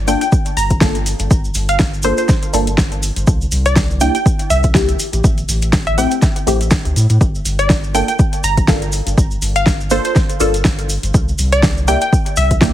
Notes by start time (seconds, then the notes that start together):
Already playing: G1
0.07 A#3 D4 F4 A4 G5, open hi-hat, cabasa
0.21 G5, closed hi-hat, cabasa
0.32 kick, cabasa
0.46 closed hi-hat, cabasa
0.57 G1 A#5, open hi-hat, cabasa
0.70 kick, closed hi-hat, cabasa
0.81 A#3 D4 F4 A4, kick, snare, cabasa
0.95 closed hi-hat, cabasa
1.06 open hi-hat, cabasa
1.19 G1, closed hi-hat, cabasa
1.31 G1, kick, cabasa
1.44 cabasa
1.55 G1, open hi-hat, cabasa
1.69 F5, closed hi-hat, cabasa
1.79 kick, snare, cabasa
1.94 cabasa
2.03 A#3 D4 F4 A4 C5, open hi-hat, cabasa
2.18 C5, closed hi-hat, cabasa
2.29 kick, snare, cabasa
2.43 closed hi-hat, cabasa
2.53 G1 A#3 D4 F4 A4, open hi-hat, cabasa
2.67 closed hi-hat, cabasa
2.78 kick, snare, cabasa
2.92 closed hi-hat, cabasa
3.03 open hi-hat, cabasa
3.16 G1, closed hi-hat, cabasa
3.27 C2, kick, cabasa
3.41 cabasa
3.52 C2, open hi-hat, cabasa
3.66 D5, closed hi-hat, cabasa
3.76 kick, snare, cabasa
3.90 cabasa
4.01 A#3 D4 E4 G4 G5, open hi-hat, cabasa
4.15 G5, closed hi-hat, cabasa
4.26 kick, cabasa
4.39 closed hi-hat, cabasa
4.50 C2 E5, open hi-hat, cabasa
4.63 kick, closed hi-hat, cabasa
4.75 A#3 D4 E4 G4, kick, snare, cabasa
4.88 closed hi-hat, cabasa
5.00 open hi-hat, cabasa
5.13 A1, closed hi-hat, cabasa
5.24 A1, kick, cabasa
5.38 closed hi-hat, cabasa
5.49 A1, open hi-hat, cabasa
5.62 closed hi-hat, cabasa
5.73 kick, snare, cabasa
5.87 E5, closed hi-hat, cabasa
5.97 A3 C4 E4 G4 G5, open hi-hat, cabasa
6.11 closed hi-hat, cabasa
6.22 kick, snare, cabasa
6.36 closed hi-hat, cabasa
6.47 A1 A3 C4 E4 G4, open hi-hat, cabasa
6.61 closed hi-hat, cabasa
6.71 kick, snare, cabasa
6.85 D2, closed hi-hat, cabasa
6.96 A2, open hi-hat, cabasa
7.10 A2, closed hi-hat, cabasa
7.21 G1, kick, cabasa
7.35 cabasa
7.45 G1, open hi-hat, cabasa
7.59 D5, closed hi-hat, cabasa
7.70 kick, snare, cabasa
7.83 cabasa
7.94 A#3 D4 F4 A4 G5, open hi-hat, cabasa
8.08 G5, closed hi-hat, cabasa
8.19 kick, cabasa
8.33 closed hi-hat, cabasa
8.44 G1 A#5, open hi-hat, cabasa
8.57 kick, closed hi-hat, cabasa
8.68 A#3 D4 F4 A4, kick, snare, cabasa
8.82 closed hi-hat, cabasa
8.92 open hi-hat, cabasa
9.07 G1, closed hi-hat, cabasa
9.18 G1, kick, cabasa
9.31 cabasa
9.42 G1, open hi-hat, cabasa
9.56 F5, closed hi-hat, cabasa
9.66 kick, snare, cabasa
9.80 cabasa
9.90 A#3 D4 F4 A4 C5, open hi-hat, cabasa
10.05 C5, closed hi-hat, cabasa
10.15 kick, snare, cabasa
10.29 closed hi-hat, cabasa
10.40 G1 A#3 D4 F4 A4, open hi-hat, cabasa
10.54 closed hi-hat, cabasa
10.65 kick, snare, cabasa
10.79 closed hi-hat, cabasa
10.89 open hi-hat, cabasa
11.03 G1, closed hi-hat, cabasa
11.14 C2, kick, cabasa
11.28 cabasa
11.39 C2, open hi-hat, cabasa
11.52 D5, closed hi-hat, cabasa
11.63 kick, snare, cabasa
11.77 cabasa
11.88 A#3 D4 E4 G4 G5, open hi-hat, cabasa
12.01 G5, closed hi-hat, cabasa
12.13 kick, cabasa
12.26 closed hi-hat, cabasa
12.37 C2 E5, open hi-hat, cabasa
12.51 kick, closed hi-hat, cabasa
12.61 A#3 D4 E4 G4, kick, snare, cabasa